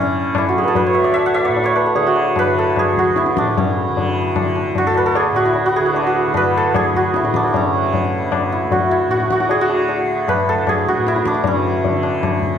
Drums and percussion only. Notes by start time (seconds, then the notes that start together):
0.35 tabla na, tabla ge
0.55 tabla ge
0.75 tabla tin, tabla ge
1.16 tabla na
1.36 tabla na
1.57 tabla tin
1.76 tabla na
1.95 tabla tin
2.16 tabla na
2.36 tabla na, tabla ge
2.76 tabla na, tabla ge
2.97 tabla ge
3.16 tabla te
3.26 tabla te
3.37 tabla ke
3.48 tabla te
3.58 tabla tin, tabla ge
3.97 tabla tin, tabla ge
4.36 tabla na, tabla ge
4.56 tabla te
4.75 tabla tin, tabla ge
4.95 tabla na
5.15 tabla na
5.35 tabla na
5.55 tabla tin
5.94 tabla tin
6.34 tabla na, tabla ge
6.75 tabla na, tabla ge
6.94 tabla ge
7.14 tabla te
7.25 tabla te
7.34 tabla ke
7.43 tabla te
7.54 tabla tin, tabla ge
7.94 tabla tin, tabla ge
8.32 tabla na, tabla ge
8.71 tabla tin, tabla ge
9.11 tabla te
9.20 tabla te
9.30 tabla ke
9.40 tabla te
9.49 tabla tin
9.70 tabla na
9.89 tabla tin
10.28 tabla na, tabla ge
10.67 tabla na, tabla ge
10.87 tabla ge
11.07 tabla te
11.16 tabla te
11.25 tabla ke
11.35 tabla te
11.44 tabla tin, tabla ge
11.84 tabla tin, tabla ge
12.03 tabla na
12.23 tabla na, tabla ge
12.42 tabla ge